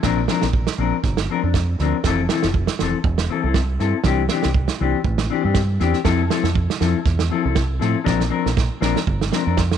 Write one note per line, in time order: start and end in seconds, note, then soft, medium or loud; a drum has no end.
0.03 0.27 A#1 loud
0.03 0.20 F3 medium
0.03 0.20 C4 medium
0.03 0.20 D4 medium
0.03 0.20 A#4 medium
0.03 kick loud
0.03 snare medium
0.28 0.44 F3 medium
0.28 0.45 C4 medium
0.28 0.45 D4 medium
0.28 0.45 A#4 medium
0.28 snare medium
0.42 0.65 A#1 medium
0.42 snare medium
0.53 kick medium
0.67 snare medium
0.78 0.91 A#1 medium
0.78 0.95 F3 medium
0.78 0.95 C4 medium
0.78 0.95 D4 medium
0.78 0.96 A#4 medium
1.03 1.27 G1 loud
1.03 kick loud
1.03 snare soft
1.17 snare medium
1.30 1.43 F3 medium
1.30 1.44 C4 medium
1.30 1.43 D4 medium
1.30 1.41 A#4 medium
1.42 1.76 F2 medium
1.42 1.57 D4 medium
1.42 muted clean electric guitar stroke medium
1.54 kick medium
1.54 snare medium
1.79 1.92 D2 medium
1.79 1.96 F3 medium
1.79 1.96 C4 medium
1.79 1.97 D4 medium
1.79 1.97 A#4 medium
1.79 snare soft
2.04 2.27 F1 loud
2.04 2.21 E3 medium
2.04 2.21 C4 loud
2.04 2.21 E4 medium
2.04 2.21 A4 medium
2.04 kick medium
2.04 snare medium
2.29 2.46 E3 medium
2.29 2.46 C4 medium
2.29 2.46 E4 medium
2.29 2.47 A4 medium
2.29 snare medium
2.43 2.66 F1 loud
2.43 snare medium
2.54 kick loud
2.67 snare medium
2.79 2.93 F1 medium
2.79 2.96 E3 medium
2.79 2.96 C4 medium
2.79 2.97 A4 medium
2.79 muted clean electric guitar stroke medium
2.79 snare medium
3.04 3.27 E1 loud
3.04 kick loud
3.18 snare medium
3.29 3.43 E3 medium
3.29 3.44 C4 medium
3.29 3.43 E4 medium
3.29 3.42 A4 medium
3.43 3.77 C2 medium
3.43 3.59 C4 medium
3.43 3.58 E4 medium
3.43 3.57 A4 medium
3.54 kick medium
3.54 snare medium
3.80 3.92 G2 medium
3.80 3.96 C4 medium
3.80 3.96 E4 medium
3.80 3.96 A4 medium
3.80 snare soft
4.04 4.27 C2 loud
4.04 4.21 E3 medium
4.04 4.21 C4 medium
4.04 4.21 D4 medium
4.04 4.22 G4 medium
4.04 kick medium
4.04 snare medium
4.29 4.46 E3 medium
4.29 4.46 C4 medium
4.29 4.47 D4 medium
4.29 4.47 G4 medium
4.29 snare medium
4.43 4.67 C2 medium
4.43 snare medium
4.54 kick loud
4.68 snare medium
4.80 4.93 C2 medium
4.80 4.96 E3 medium
4.80 4.97 C4 medium
4.80 4.97 D4 medium
4.80 4.97 G4 medium
5.04 5.28 A1 loud
5.04 kick loud
5.18 snare medium
5.30 5.44 E3 medium
5.30 5.44 C4 medium
5.30 5.44 D4 medium
5.30 5.42 G4 medium
5.43 5.77 G2 loud
5.43 5.59 C4 medium
5.43 5.59 D4 medium
5.43 5.58 G4 medium
5.54 kick medium
5.54 snare medium
5.80 5.93 E2 loud
5.80 5.96 E3 medium
5.80 5.96 C4 medium
5.80 5.97 D4 medium
5.80 5.97 G4 medium
5.80 snare soft
5.93 snare soft
6.04 6.28 F2 loud
6.04 6.21 F3 medium
6.04 6.21 C4 medium
6.04 6.21 E4 medium
6.04 6.21 A4 medium
6.04 kick medium
6.04 snare medium
6.29 6.46 F3 medium
6.29 6.47 C4 medium
6.29 6.47 E4 medium
6.29 6.47 A4 medium
6.29 snare medium
6.43 6.67 F2 medium
6.43 snare medium
6.55 kick loud
6.70 snare medium
6.80 6.93 F2 medium
6.80 6.96 F3 medium
6.80 6.97 C4 medium
6.80 6.97 E4 medium
6.80 6.97 A4 medium
6.80 snare medium
7.05 7.29 E2 loud
7.05 kick loud
7.05 snare soft
7.19 snare medium
7.30 7.44 F3 medium
7.30 7.45 C4 medium
7.30 7.44 E4 medium
7.30 7.43 A4 medium
7.44 7.78 C2 medium
7.44 7.60 C4 soft
7.44 7.59 E4 medium
7.44 7.59 A4 medium
7.55 kick loud
7.55 snare medium
7.79 7.94 A2 loud
7.79 7.96 F3 medium
7.79 7.97 C4 medium
7.79 7.97 E4 medium
7.79 7.97 A4 medium
7.79 snare soft
8.04 8.29 A#1 loud
8.04 8.21 F3 medium
8.04 8.21 C4 medium
8.04 8.21 D4 medium
8.04 8.22 A#4 medium
8.04 kick medium
8.04 snare medium
8.20 snare soft
8.29 8.46 F3 medium
8.29 8.47 C4 medium
8.29 8.47 D4 medium
8.29 8.47 A#4 medium
8.46 8.68 A#1 loud
8.46 snare soft
8.57 kick loud
8.57 snare medium
8.81 8.94 A#1 medium
8.81 8.97 F3 medium
8.81 8.97 C4 medium
8.81 8.98 D4 medium
8.81 8.98 A#4 medium
8.81 snare medium
8.96 snare medium
9.07 9.30 G1 loud
9.07 kick loud
9.21 snare medium
9.31 9.45 F3 medium
9.31 9.46 C4 medium
9.31 9.45 D4 medium
9.31 9.43 A#4 medium
9.31 snare medium
9.45 9.78 F2 medium
9.45 9.61 C4 soft
9.45 9.60 D4 medium
9.45 9.59 A#4 medium
9.57 kick medium
9.57 snare medium
9.72 snare medium